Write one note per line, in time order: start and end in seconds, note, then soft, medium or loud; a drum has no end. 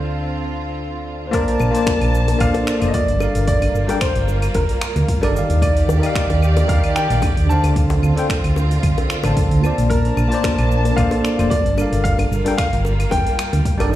0.00 1.31 D2 medium
0.00 1.28 D3 medium
0.00 1.31 D3 medium
0.00 1.31 C4 medium
0.00 1.29 D4 medium
0.00 1.31 F4 medium
0.00 1.30 A4 medium
0.00 0.76 C5 medium
0.00 1.31 C5 medium
0.00 1.32 F5 medium
0.00 1.34 A5 medium
1.27 1.33 C5 medium
1.31 1.68 A#3 loud
1.31 3.19 A#3 medium
1.31 3.19 D4 medium
1.31 1.68 F4 medium
1.31 2.44 A#4 medium
1.31 1.69 C5 medium
1.31 1.69 D5 loud
1.31 3.19 A5 medium
1.31 1.69 A5 medium
1.31 kick medium
1.31 open hi-hat medium
1.31 cabasa soft
1.48 open hi-hat soft
1.60 1.69 A#1 medium
1.60 high bongo soft
1.60 cabasa medium
1.60 claves medium
1.71 2.35 A#3 medium
1.71 2.36 F4 medium
1.71 2.37 A5 medium
1.71 open hi-hat soft
1.75 2.38 C5 medium
1.75 2.39 D5 medium
1.75 cabasa soft
1.87 finger snap medium
1.87 kick loud
1.87 open hi-hat medium
1.87 high bongo medium
1.87 cabasa soft
2.01 2.33 A#1 loud
2.01 open hi-hat soft
2.01 claves medium
2.14 cabasa medium
2.28 open hi-hat soft
2.28 high bongo medium
2.28 cabasa soft
2.38 2.49 A#1 loud
2.38 2.77 A#3 medium
2.38 2.78 F4 medium
2.38 2.78 A4 medium
2.38 2.78 C5 medium
2.38 2.79 D5 medium
2.38 2.84 F5 loud
2.38 kick loud
2.38 open hi-hat medium
2.38 cabasa soft
2.38 claves medium
2.54 open hi-hat soft
2.54 high bongo medium
2.67 finger snap medium
2.67 cabasa medium
2.80 2.89 F1 loud
2.80 2.90 A#3 medium
2.80 2.90 F4 medium
2.80 2.90 A4 medium
2.80 2.91 C5 medium
2.80 2.91 D5 medium
2.80 open hi-hat soft
2.80 cabasa soft
2.80 claves medium
2.87 2.94 D#5 medium
2.94 3.46 D5 medium
2.94 kick medium
2.94 open hi-hat medium
2.94 high bongo medium
2.94 cabasa soft
3.08 3.24 G1 medium
3.08 open hi-hat soft
3.17 3.83 G3 medium
3.17 5.60 G3 medium
3.17 5.59 A#3 loud
3.17 3.84 D4 medium
3.17 5.59 F4 medium
3.17 3.85 A4 medium
3.17 high bongo medium
3.17 claves medium
3.21 3.86 A#4 medium
3.21 3.87 F5 medium
3.21 cabasa medium
3.35 3.67 G1 medium
3.35 open hi-hat soft
3.35 cabasa soft
3.47 4.03 D5 loud
3.47 kick loud
3.47 open hi-hat medium
3.47 cabasa soft
3.62 open hi-hat soft
3.62 high bongo medium
3.62 claves medium
3.74 3.83 G1 medium
3.74 cabasa medium
3.87 3.97 G3 medium
3.87 3.97 D4 medium
3.87 3.98 A4 medium
3.87 3.98 A#4 medium
3.87 3.98 G5 loud
3.87 open hi-hat soft
3.87 high bongo medium
3.87 cabasa soft
4.01 4.56 C5 medium
4.01 finger snap medium
4.01 kick loud
4.01 open hi-hat medium
4.01 cabasa soft
4.01 claves medium
4.15 4.47 G1 loud
4.15 open hi-hat soft
4.28 high bongo medium
4.28 cabasa medium
4.42 open hi-hat soft
4.42 cabasa soft
4.42 claves medium
4.54 4.64 G1 medium
4.54 5.31 A#4 medium
4.54 kick loud
4.54 open hi-hat medium
4.54 high bongo medium
4.54 cabasa soft
4.69 open hi-hat soft
4.81 finger snap medium
4.81 cabasa medium
4.81 claves medium
4.96 5.04 D2 loud
4.96 open hi-hat soft
4.96 high bongo soft
4.96 cabasa soft
5.08 kick loud
5.08 open hi-hat medium
5.08 cabasa soft
5.21 5.38 G1 medium
5.21 5.31 G3 loud
5.21 5.32 D4 medium
5.21 5.32 A4 medium
5.21 5.32 A#4 medium
5.21 5.33 D5 loud
5.21 open hi-hat soft
5.21 high bongo medium
5.21 claves medium
5.32 5.98 D#3 medium
5.32 5.99 D#4 medium
5.32 6.00 G4 medium
5.36 6.01 D5 medium
5.36 6.01 F5 medium
5.36 cabasa medium
5.49 5.81 D#2 medium
5.49 open hi-hat soft
5.49 cabasa soft
5.62 7.74 D#3 medium
5.62 7.74 G4 medium
5.62 7.74 D5 medium
5.62 6.72 D5 medium
5.62 kick loud
5.62 open hi-hat medium
5.62 high bongo medium
5.62 cabasa soft
5.62 claves medium
5.77 open hi-hat soft
5.88 5.97 D#2 medium
5.88 high bongo medium
5.88 cabasa medium
6.00 6.64 D#3 medium
6.00 6.65 D#4 medium
6.00 6.66 G4 medium
6.00 open hi-hat soft
6.00 claves medium
6.04 6.67 D5 medium
6.04 6.68 F5 loud
6.04 cabasa soft
6.15 finger snap medium
6.15 kick loud
6.15 open hi-hat medium
6.15 cabasa soft
6.30 6.61 D#2 loud
6.30 open hi-hat soft
6.30 high bongo medium
6.42 cabasa medium
6.42 claves medium
6.57 open hi-hat soft
6.57 high bongo medium
6.57 cabasa soft
6.67 6.78 D#2 loud
6.67 7.06 D#3 medium
6.67 7.06 D#4 medium
6.67 7.07 G4 medium
6.67 7.07 D5 medium
6.67 6.94 F5 medium
6.67 7.07 F5 medium
6.67 kick loud
6.67 open hi-hat medium
6.67 cabasa soft
6.84 open hi-hat soft
6.84 claves medium
6.96 7.51 G5 loud
6.96 finger snap medium
6.96 high bongo soft
6.96 cabasa medium
7.08 7.18 A#1 loud
7.08 7.18 D#3 medium
7.08 7.19 D#4 medium
7.08 7.19 G4 medium
7.08 7.19 D5 medium
7.08 7.20 F5 medium
7.08 open hi-hat soft
7.08 cabasa soft
7.22 kick loud
7.22 open hi-hat medium
7.22 high bongo medium
7.22 cabasa soft
7.22 claves medium
7.37 7.53 D#2 medium
7.37 open hi-hat soft
7.45 8.12 D3 medium
7.45 8.13 D4 medium
7.45 8.14 A4 medium
7.45 7.99 A5 loud
7.50 8.15 C5 medium
7.50 8.15 F5 medium
7.50 cabasa medium
7.63 7.95 D2 loud
7.63 open hi-hat soft
7.63 high bongo medium
7.63 cabasa soft
7.63 claves medium
7.76 9.88 D3 medium
7.76 9.88 C4 medium
7.76 9.88 F4 medium
7.76 kick loud
7.76 open hi-hat soft
7.76 cabasa soft
7.90 open hi-hat soft
7.90 high bongo medium
8.03 8.12 D2 medium
8.03 cabasa medium
8.03 claves medium
8.16 8.25 D3 medium
8.16 8.26 D4 medium
8.16 8.26 A4 medium
8.16 8.27 C5 medium
8.16 8.27 G5 loud
8.16 open hi-hat soft
8.16 cabasa soft
8.30 finger snap medium
8.30 kick loud
8.30 open hi-hat medium
8.30 high bongo soft
8.30 cabasa soft
8.44 8.76 D2 loud
8.44 open hi-hat soft
8.44 claves medium
8.56 high bongo medium
8.56 cabasa medium
8.71 open hi-hat soft
8.71 cabasa soft
8.83 8.92 D2 loud
8.83 kick loud
8.83 open hi-hat medium
8.83 cabasa soft
8.83 claves medium
8.98 open hi-hat soft
8.98 high bongo medium
9.10 finger snap medium
9.10 cabasa medium
9.23 9.32 A1 medium
9.23 9.60 D3 medium
9.23 9.60 D4 medium
9.23 9.61 A4 medium
9.23 9.61 C5 medium
9.23 9.61 A5 medium
9.23 open hi-hat soft
9.23 high bongo medium
9.23 cabasa soft
9.23 claves medium
9.37 kick loud
9.37 open hi-hat medium
9.37 cabasa soft
9.51 9.67 D2 medium
9.51 open hi-hat soft
9.60 10.26 A#3 medium
9.60 10.27 F4 medium
9.60 10.28 A5 medium
9.60 claves medium
9.64 10.29 C5 medium
9.64 10.30 D5 medium
9.64 high bongo medium
9.64 cabasa medium
9.78 10.10 A#1 medium
9.78 open hi-hat soft
9.78 cabasa soft
9.90 11.76 A#3 medium
9.90 11.76 D4 medium
9.90 11.00 A#4 medium
9.90 11.76 A5 medium
9.90 kick loud
9.90 open hi-hat medium
9.90 cabasa soft
10.05 open hi-hat soft
10.17 10.26 A#1 medium
10.17 high bongo medium
10.17 cabasa medium
10.17 claves medium
10.28 10.93 A#3 medium
10.28 10.93 F4 medium
10.28 10.94 A5 medium
10.28 open hi-hat soft
10.33 10.95 C5 medium
10.33 10.96 D5 loud
10.33 cabasa soft
10.44 finger snap medium
10.44 kick loud
10.44 open hi-hat medium
10.44 high bongo medium
10.44 cabasa soft
10.58 10.90 A#1 loud
10.58 open hi-hat soft
10.58 claves medium
10.71 cabasa medium
10.85 open hi-hat soft
10.85 high bongo medium
10.85 cabasa soft
10.96 11.07 A#1 medium
10.96 11.34 A#3 medium
10.96 11.35 F4 medium
10.96 11.35 A4 medium
10.96 11.36 C5 medium
10.96 11.36 D5 medium
10.96 11.52 F5 loud
10.96 kick loud
10.96 open hi-hat medium
10.96 cabasa soft
10.96 claves medium
11.11 open hi-hat soft
11.11 high bongo medium
11.25 finger snap medium
11.25 cabasa medium
11.37 11.46 F1 loud
11.37 11.47 A#3 medium
11.37 11.47 F4 medium
11.37 11.48 A4 medium
11.37 11.48 C5 medium
11.37 11.49 D5 medium
11.37 open hi-hat soft
11.37 cabasa soft
11.37 claves medium
11.50 12.00 D5 loud
11.50 kick loud
11.50 open hi-hat medium
11.50 high bongo medium
11.50 cabasa soft
11.66 11.81 G1 medium
11.66 open hi-hat soft
11.75 12.41 G3 medium
11.75 13.96 G3 medium
11.75 13.96 A#3 medium
11.75 12.42 D4 medium
11.75 13.96 F4 medium
11.75 12.43 A4 medium
11.75 high bongo medium
11.75 claves medium
11.79 12.43 A#4 medium
11.79 12.44 F5 medium
11.79 cabasa medium
11.92 12.24 G1 medium
11.92 open hi-hat soft
11.92 cabasa soft
12.04 12.56 F5 loud
12.04 kick medium
12.04 open hi-hat medium
12.04 cabasa soft
12.19 open hi-hat soft
12.19 high bongo medium
12.19 claves medium
12.31 12.40 G1 loud
12.31 cabasa medium
12.44 12.54 G3 medium
12.44 12.54 D4 medium
12.44 12.55 A4 medium
12.44 12.55 A#4 medium
12.44 12.56 G5 loud
12.44 open hi-hat soft
12.44 high bongo medium
12.44 cabasa soft
12.58 13.08 F5 loud
12.58 finger snap medium
12.58 kick loud
12.58 open hi-hat medium
12.58 cabasa soft
12.58 claves medium
12.73 13.04 G1 loud
12.73 open hi-hat soft
12.85 high bongo medium
12.85 cabasa medium
13.00 open hi-hat soft
13.00 cabasa soft
13.00 claves medium
13.11 13.21 G1 loud
13.11 13.88 G5 loud
13.11 kick medium
13.11 open hi-hat medium
13.11 high bongo medium
13.11 cabasa soft
13.27 open hi-hat soft
13.39 finger snap medium
13.39 cabasa medium
13.39 claves medium
13.53 13.61 D2 loud
13.53 open hi-hat soft
13.53 high bongo soft
13.53 cabasa soft
13.65 kick loud
13.65 open hi-hat medium
13.65 cabasa soft
13.78 13.96 G1 medium
13.78 13.88 G3 loud
13.78 13.89 D4 medium
13.78 13.89 A4 medium
13.78 13.89 A#4 medium
13.78 13.90 D5 loud
13.78 open hi-hat soft
13.78 high bongo medium
13.78 claves medium
13.89 13.96 D#3 medium
13.89 13.96 D#4 medium
13.89 13.96 G4 medium